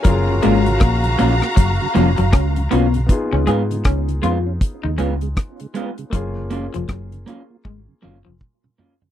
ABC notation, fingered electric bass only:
X:1
M:4/4
L:1/16
Q:"Swing 16ths" 1/4=79
K:F#
V:1 name="Fingered electric bass" clef=bass
F,,,2 G,,,2 A,,,2 A,,, z F,,, z E,,, F,,, C,,2 B,,,2 | z C,, G,,2 C,,2 E,,2 z D,, C,,2 z4 | F,,,3 E,,, z4 G,,, z F,,, E,,, z4 |]